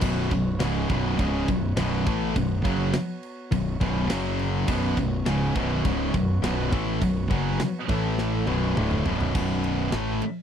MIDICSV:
0, 0, Header, 1, 7, 480
1, 0, Start_track
1, 0, Tempo, 583090
1, 17, Time_signature, 4, 2, 24, 8
1, 8580, End_track
2, 0, Start_track
2, 0, Title_t, "Pipe organ"
2, 0, Program_c, 0, 19
2, 19, Note_on_c, 0, 59, 67
2, 19, Note_on_c, 0, 66, 62
2, 22, Note_on_c, 0, 73, 72
2, 3345, Note_off_c, 0, 59, 0
2, 3346, Note_off_c, 0, 73, 0
2, 3378, Note_on_c, 0, 61, 64
2, 3380, Note_on_c, 0, 54, 76
2, 3852, Note_off_c, 0, 61, 0
2, 3853, Note_off_c, 0, 54, 0
2, 3855, Note_on_c, 0, 73, 77
2, 3859, Note_on_c, 0, 59, 74
2, 6465, Note_off_c, 0, 66, 0
2, 6469, Note_off_c, 0, 73, 0
2, 6471, Note_off_c, 0, 59, 0
2, 6502, Note_on_c, 0, 64, 62
2, 6502, Note_on_c, 0, 71, 82
2, 6508, Note_on_c, 0, 57, 76
2, 6975, Note_off_c, 0, 64, 0
2, 6975, Note_off_c, 0, 71, 0
2, 6978, Note_off_c, 0, 57, 0
2, 6979, Note_on_c, 0, 59, 75
2, 6982, Note_on_c, 0, 66, 63
2, 6982, Note_on_c, 0, 73, 80
2, 7691, Note_off_c, 0, 59, 0
2, 7693, Note_off_c, 0, 66, 0
2, 7693, Note_off_c, 0, 73, 0
2, 8580, End_track
3, 0, Start_track
3, 0, Title_t, "Distorted electric guitar"
3, 0, Program_c, 1, 30
3, 16, Note_on_c, 1, 35, 87
3, 21, Note_on_c, 1, 42, 107
3, 24, Note_on_c, 1, 47, 113
3, 247, Note_off_c, 1, 35, 0
3, 252, Note_off_c, 1, 42, 0
3, 253, Note_off_c, 1, 47, 0
3, 257, Note_on_c, 1, 35, 60
3, 265, Note_on_c, 1, 42, 71
3, 449, Note_off_c, 1, 35, 0
3, 453, Note_off_c, 1, 42, 0
3, 498, Note_on_c, 1, 37, 97
3, 508, Note_on_c, 1, 44, 102
3, 511, Note_on_c, 1, 49, 115
3, 729, Note_off_c, 1, 37, 0
3, 732, Note_on_c, 1, 35, 92
3, 735, Note_off_c, 1, 44, 0
3, 737, Note_off_c, 1, 49, 0
3, 741, Note_on_c, 1, 42, 106
3, 748, Note_on_c, 1, 47, 97
3, 967, Note_off_c, 1, 35, 0
3, 972, Note_off_c, 1, 42, 0
3, 975, Note_off_c, 1, 47, 0
3, 977, Note_on_c, 1, 37, 104
3, 981, Note_on_c, 1, 44, 101
3, 986, Note_on_c, 1, 49, 102
3, 1210, Note_off_c, 1, 37, 0
3, 1211, Note_off_c, 1, 44, 0
3, 1214, Note_off_c, 1, 49, 0
3, 1219, Note_on_c, 1, 35, 66
3, 1224, Note_on_c, 1, 42, 81
3, 1410, Note_off_c, 1, 35, 0
3, 1413, Note_off_c, 1, 42, 0
3, 1455, Note_on_c, 1, 35, 109
3, 1460, Note_on_c, 1, 42, 101
3, 1467, Note_on_c, 1, 47, 117
3, 1689, Note_off_c, 1, 35, 0
3, 1691, Note_off_c, 1, 42, 0
3, 1695, Note_off_c, 1, 47, 0
3, 1697, Note_on_c, 1, 45, 85
3, 1705, Note_on_c, 1, 52, 106
3, 1708, Note_on_c, 1, 57, 110
3, 1929, Note_off_c, 1, 45, 0
3, 1934, Note_off_c, 1, 52, 0
3, 1935, Note_off_c, 1, 57, 0
3, 1939, Note_on_c, 1, 35, 75
3, 1943, Note_on_c, 1, 42, 80
3, 2130, Note_off_c, 1, 35, 0
3, 2132, Note_off_c, 1, 42, 0
3, 2174, Note_on_c, 1, 42, 89
3, 2180, Note_on_c, 1, 49, 98
3, 2183, Note_on_c, 1, 54, 96
3, 2408, Note_off_c, 1, 42, 0
3, 2411, Note_off_c, 1, 49, 0
3, 2413, Note_off_c, 1, 54, 0
3, 2900, Note_on_c, 1, 35, 74
3, 2905, Note_on_c, 1, 42, 76
3, 3090, Note_off_c, 1, 35, 0
3, 3093, Note_off_c, 1, 42, 0
3, 3138, Note_on_c, 1, 35, 86
3, 3144, Note_on_c, 1, 42, 88
3, 3148, Note_on_c, 1, 47, 114
3, 3366, Note_off_c, 1, 42, 0
3, 3370, Note_off_c, 1, 35, 0
3, 3375, Note_off_c, 1, 47, 0
3, 3376, Note_on_c, 1, 42, 97
3, 3383, Note_on_c, 1, 49, 107
3, 3386, Note_on_c, 1, 54, 113
3, 3849, Note_off_c, 1, 42, 0
3, 3853, Note_off_c, 1, 49, 0
3, 3854, Note_off_c, 1, 54, 0
3, 3854, Note_on_c, 1, 35, 100
3, 3861, Note_on_c, 1, 42, 115
3, 3868, Note_on_c, 1, 47, 109
3, 4086, Note_off_c, 1, 35, 0
3, 4088, Note_off_c, 1, 42, 0
3, 4095, Note_off_c, 1, 47, 0
3, 4096, Note_on_c, 1, 35, 68
3, 4098, Note_on_c, 1, 42, 74
3, 4288, Note_off_c, 1, 35, 0
3, 4289, Note_off_c, 1, 42, 0
3, 4330, Note_on_c, 1, 37, 96
3, 4338, Note_on_c, 1, 44, 95
3, 4342, Note_on_c, 1, 49, 117
3, 4566, Note_off_c, 1, 37, 0
3, 4570, Note_off_c, 1, 44, 0
3, 4572, Note_off_c, 1, 49, 0
3, 4573, Note_on_c, 1, 35, 104
3, 4577, Note_on_c, 1, 42, 103
3, 4584, Note_on_c, 1, 47, 109
3, 4807, Note_off_c, 1, 35, 0
3, 4809, Note_off_c, 1, 42, 0
3, 4810, Note_on_c, 1, 37, 99
3, 4813, Note_off_c, 1, 47, 0
3, 4814, Note_on_c, 1, 44, 112
3, 4819, Note_on_c, 1, 49, 104
3, 5046, Note_off_c, 1, 37, 0
3, 5048, Note_off_c, 1, 44, 0
3, 5050, Note_off_c, 1, 49, 0
3, 5054, Note_on_c, 1, 35, 73
3, 5060, Note_on_c, 1, 42, 79
3, 5247, Note_off_c, 1, 35, 0
3, 5250, Note_off_c, 1, 42, 0
3, 5299, Note_on_c, 1, 35, 102
3, 5304, Note_on_c, 1, 42, 108
3, 5310, Note_on_c, 1, 47, 109
3, 5531, Note_off_c, 1, 35, 0
3, 5533, Note_off_c, 1, 42, 0
3, 5536, Note_off_c, 1, 47, 0
3, 5539, Note_on_c, 1, 45, 88
3, 5548, Note_on_c, 1, 52, 94
3, 5550, Note_on_c, 1, 57, 99
3, 5770, Note_off_c, 1, 45, 0
3, 5775, Note_off_c, 1, 52, 0
3, 5776, Note_off_c, 1, 57, 0
3, 5786, Note_on_c, 1, 35, 73
3, 5786, Note_on_c, 1, 42, 77
3, 5973, Note_off_c, 1, 35, 0
3, 5973, Note_off_c, 1, 42, 0
3, 6021, Note_on_c, 1, 42, 94
3, 6025, Note_on_c, 1, 49, 97
3, 6032, Note_on_c, 1, 54, 95
3, 6251, Note_off_c, 1, 42, 0
3, 6253, Note_off_c, 1, 49, 0
3, 6257, Note_off_c, 1, 54, 0
3, 6496, Note_on_c, 1, 45, 91
3, 6502, Note_on_c, 1, 52, 101
3, 6505, Note_on_c, 1, 57, 101
3, 6969, Note_off_c, 1, 45, 0
3, 6972, Note_off_c, 1, 52, 0
3, 6974, Note_off_c, 1, 57, 0
3, 6977, Note_on_c, 1, 35, 100
3, 6986, Note_on_c, 1, 42, 107
3, 6988, Note_on_c, 1, 47, 106
3, 7210, Note_off_c, 1, 35, 0
3, 7214, Note_off_c, 1, 42, 0
3, 7215, Note_off_c, 1, 47, 0
3, 7217, Note_on_c, 1, 38, 102
3, 7224, Note_on_c, 1, 45, 110
3, 7229, Note_on_c, 1, 50, 108
3, 7450, Note_off_c, 1, 38, 0
3, 7453, Note_off_c, 1, 45, 0
3, 7455, Note_on_c, 1, 35, 96
3, 7456, Note_off_c, 1, 50, 0
3, 7461, Note_on_c, 1, 42, 104
3, 7468, Note_on_c, 1, 47, 106
3, 7682, Note_off_c, 1, 35, 0
3, 7687, Note_off_c, 1, 42, 0
3, 7691, Note_on_c, 1, 35, 94
3, 7692, Note_off_c, 1, 47, 0
3, 7697, Note_on_c, 1, 42, 94
3, 7702, Note_on_c, 1, 47, 104
3, 8165, Note_off_c, 1, 35, 0
3, 8169, Note_on_c, 1, 45, 83
3, 8171, Note_off_c, 1, 42, 0
3, 8173, Note_off_c, 1, 47, 0
3, 8176, Note_on_c, 1, 52, 95
3, 8181, Note_on_c, 1, 57, 94
3, 8407, Note_off_c, 1, 45, 0
3, 8410, Note_off_c, 1, 52, 0
3, 8413, Note_off_c, 1, 57, 0
3, 8580, End_track
4, 0, Start_track
4, 0, Title_t, "Fingered electric bass"
4, 0, Program_c, 2, 33
4, 19, Note_on_c, 2, 23, 91
4, 241, Note_off_c, 2, 23, 0
4, 259, Note_on_c, 2, 23, 80
4, 481, Note_off_c, 2, 23, 0
4, 502, Note_on_c, 2, 25, 93
4, 723, Note_off_c, 2, 25, 0
4, 739, Note_on_c, 2, 23, 95
4, 961, Note_off_c, 2, 23, 0
4, 980, Note_on_c, 2, 25, 98
4, 1202, Note_off_c, 2, 25, 0
4, 1220, Note_on_c, 2, 23, 87
4, 1442, Note_off_c, 2, 23, 0
4, 1461, Note_on_c, 2, 23, 96
4, 1682, Note_off_c, 2, 23, 0
4, 1702, Note_on_c, 2, 33, 92
4, 1923, Note_off_c, 2, 33, 0
4, 1943, Note_on_c, 2, 23, 82
4, 2163, Note_off_c, 2, 23, 0
4, 2182, Note_on_c, 2, 30, 101
4, 2403, Note_off_c, 2, 30, 0
4, 2900, Note_on_c, 2, 23, 79
4, 3122, Note_off_c, 2, 23, 0
4, 3139, Note_on_c, 2, 23, 105
4, 3361, Note_off_c, 2, 23, 0
4, 3379, Note_on_c, 2, 30, 98
4, 3825, Note_off_c, 2, 30, 0
4, 3853, Note_on_c, 2, 23, 93
4, 4078, Note_off_c, 2, 23, 0
4, 4094, Note_on_c, 2, 23, 84
4, 4318, Note_off_c, 2, 23, 0
4, 4340, Note_on_c, 2, 25, 97
4, 4562, Note_off_c, 2, 25, 0
4, 4574, Note_on_c, 2, 23, 101
4, 4798, Note_off_c, 2, 23, 0
4, 4817, Note_on_c, 2, 25, 101
4, 5040, Note_off_c, 2, 25, 0
4, 5056, Note_on_c, 2, 23, 90
4, 5279, Note_off_c, 2, 23, 0
4, 5294, Note_on_c, 2, 23, 97
4, 5518, Note_off_c, 2, 23, 0
4, 5536, Note_on_c, 2, 33, 99
4, 5759, Note_off_c, 2, 33, 0
4, 5775, Note_on_c, 2, 23, 77
4, 5998, Note_off_c, 2, 23, 0
4, 6017, Note_on_c, 2, 30, 99
4, 6240, Note_off_c, 2, 30, 0
4, 6498, Note_on_c, 2, 33, 104
4, 6944, Note_off_c, 2, 33, 0
4, 6977, Note_on_c, 2, 23, 101
4, 7200, Note_off_c, 2, 23, 0
4, 7223, Note_on_c, 2, 26, 101
4, 7444, Note_off_c, 2, 26, 0
4, 7460, Note_on_c, 2, 23, 91
4, 7682, Note_off_c, 2, 23, 0
4, 7697, Note_on_c, 2, 23, 87
4, 8145, Note_off_c, 2, 23, 0
4, 8179, Note_on_c, 2, 33, 91
4, 8402, Note_off_c, 2, 33, 0
4, 8580, End_track
5, 0, Start_track
5, 0, Title_t, "Muted distorted electric guitar strokes"
5, 8419, Note_on_c, 9, 29, 54
5, 8501, Note_off_c, 9, 29, 0
5, 8580, End_track
6, 0, Start_track
6, 0, Title_t, "Muted fingered electric bass strokes"
6, 8423, Note_on_c, 9, 29, 40
6, 8506, Note_off_c, 9, 29, 0
6, 8580, End_track
7, 0, Start_track
7, 0, Title_t, "Drums"
7, 10, Note_on_c, 9, 49, 125
7, 10, Note_on_c, 9, 57, 95
7, 17, Note_on_c, 9, 36, 115
7, 93, Note_off_c, 9, 49, 0
7, 93, Note_off_c, 9, 57, 0
7, 100, Note_off_c, 9, 36, 0
7, 254, Note_on_c, 9, 57, 59
7, 258, Note_on_c, 9, 36, 86
7, 337, Note_off_c, 9, 57, 0
7, 340, Note_off_c, 9, 36, 0
7, 494, Note_on_c, 9, 57, 87
7, 495, Note_on_c, 9, 38, 110
7, 576, Note_off_c, 9, 57, 0
7, 577, Note_off_c, 9, 38, 0
7, 734, Note_on_c, 9, 57, 57
7, 739, Note_on_c, 9, 36, 107
7, 817, Note_off_c, 9, 57, 0
7, 821, Note_off_c, 9, 36, 0
7, 977, Note_on_c, 9, 57, 73
7, 980, Note_on_c, 9, 36, 107
7, 1060, Note_off_c, 9, 57, 0
7, 1062, Note_off_c, 9, 36, 0
7, 1221, Note_on_c, 9, 36, 100
7, 1221, Note_on_c, 9, 57, 65
7, 1303, Note_off_c, 9, 36, 0
7, 1304, Note_off_c, 9, 57, 0
7, 1456, Note_on_c, 9, 57, 90
7, 1457, Note_on_c, 9, 38, 125
7, 1538, Note_off_c, 9, 57, 0
7, 1539, Note_off_c, 9, 38, 0
7, 1701, Note_on_c, 9, 36, 106
7, 1701, Note_on_c, 9, 57, 61
7, 1783, Note_off_c, 9, 57, 0
7, 1784, Note_off_c, 9, 36, 0
7, 1942, Note_on_c, 9, 36, 94
7, 1942, Note_on_c, 9, 57, 89
7, 2025, Note_off_c, 9, 36, 0
7, 2025, Note_off_c, 9, 57, 0
7, 2181, Note_on_c, 9, 36, 96
7, 2183, Note_on_c, 9, 57, 64
7, 2263, Note_off_c, 9, 36, 0
7, 2266, Note_off_c, 9, 57, 0
7, 2416, Note_on_c, 9, 57, 83
7, 2417, Note_on_c, 9, 38, 118
7, 2498, Note_off_c, 9, 57, 0
7, 2499, Note_off_c, 9, 38, 0
7, 2658, Note_on_c, 9, 57, 69
7, 2740, Note_off_c, 9, 57, 0
7, 2897, Note_on_c, 9, 57, 90
7, 2898, Note_on_c, 9, 36, 98
7, 2979, Note_off_c, 9, 57, 0
7, 2980, Note_off_c, 9, 36, 0
7, 3137, Note_on_c, 9, 57, 68
7, 3138, Note_on_c, 9, 36, 112
7, 3220, Note_off_c, 9, 36, 0
7, 3220, Note_off_c, 9, 57, 0
7, 3373, Note_on_c, 9, 57, 95
7, 3374, Note_on_c, 9, 38, 117
7, 3456, Note_off_c, 9, 38, 0
7, 3456, Note_off_c, 9, 57, 0
7, 3615, Note_on_c, 9, 57, 69
7, 3698, Note_off_c, 9, 57, 0
7, 3850, Note_on_c, 9, 57, 98
7, 3854, Note_on_c, 9, 36, 112
7, 3932, Note_off_c, 9, 57, 0
7, 3936, Note_off_c, 9, 36, 0
7, 4091, Note_on_c, 9, 57, 63
7, 4093, Note_on_c, 9, 36, 88
7, 4173, Note_off_c, 9, 57, 0
7, 4175, Note_off_c, 9, 36, 0
7, 4331, Note_on_c, 9, 57, 80
7, 4332, Note_on_c, 9, 38, 111
7, 4413, Note_off_c, 9, 57, 0
7, 4414, Note_off_c, 9, 38, 0
7, 4573, Note_on_c, 9, 57, 59
7, 4574, Note_on_c, 9, 36, 102
7, 4656, Note_off_c, 9, 57, 0
7, 4657, Note_off_c, 9, 36, 0
7, 4815, Note_on_c, 9, 36, 114
7, 4816, Note_on_c, 9, 57, 78
7, 4898, Note_off_c, 9, 36, 0
7, 4898, Note_off_c, 9, 57, 0
7, 5055, Note_on_c, 9, 36, 99
7, 5056, Note_on_c, 9, 57, 66
7, 5138, Note_off_c, 9, 36, 0
7, 5139, Note_off_c, 9, 57, 0
7, 5299, Note_on_c, 9, 57, 84
7, 5300, Note_on_c, 9, 38, 123
7, 5382, Note_off_c, 9, 38, 0
7, 5382, Note_off_c, 9, 57, 0
7, 5536, Note_on_c, 9, 36, 107
7, 5538, Note_on_c, 9, 57, 59
7, 5618, Note_off_c, 9, 36, 0
7, 5620, Note_off_c, 9, 57, 0
7, 5776, Note_on_c, 9, 36, 93
7, 5776, Note_on_c, 9, 57, 91
7, 5858, Note_off_c, 9, 36, 0
7, 5858, Note_off_c, 9, 57, 0
7, 6014, Note_on_c, 9, 57, 59
7, 6015, Note_on_c, 9, 36, 100
7, 6096, Note_off_c, 9, 57, 0
7, 6097, Note_off_c, 9, 36, 0
7, 6254, Note_on_c, 9, 57, 83
7, 6255, Note_on_c, 9, 38, 107
7, 6336, Note_off_c, 9, 57, 0
7, 6337, Note_off_c, 9, 38, 0
7, 6495, Note_on_c, 9, 57, 64
7, 6496, Note_on_c, 9, 36, 107
7, 6577, Note_off_c, 9, 57, 0
7, 6578, Note_off_c, 9, 36, 0
7, 6735, Note_on_c, 9, 38, 64
7, 6817, Note_off_c, 9, 38, 0
7, 6974, Note_on_c, 9, 48, 79
7, 7056, Note_off_c, 9, 48, 0
7, 7220, Note_on_c, 9, 47, 98
7, 7303, Note_off_c, 9, 47, 0
7, 7335, Note_on_c, 9, 45, 89
7, 7417, Note_off_c, 9, 45, 0
7, 7455, Note_on_c, 9, 43, 108
7, 7537, Note_off_c, 9, 43, 0
7, 7578, Note_on_c, 9, 43, 94
7, 7660, Note_off_c, 9, 43, 0
7, 7695, Note_on_c, 9, 49, 118
7, 7697, Note_on_c, 9, 36, 110
7, 7777, Note_off_c, 9, 49, 0
7, 7780, Note_off_c, 9, 36, 0
7, 7934, Note_on_c, 9, 51, 66
7, 8017, Note_off_c, 9, 51, 0
7, 8168, Note_on_c, 9, 51, 92
7, 8169, Note_on_c, 9, 38, 107
7, 8250, Note_off_c, 9, 51, 0
7, 8251, Note_off_c, 9, 38, 0
7, 8410, Note_on_c, 9, 51, 67
7, 8493, Note_off_c, 9, 51, 0
7, 8580, End_track
0, 0, End_of_file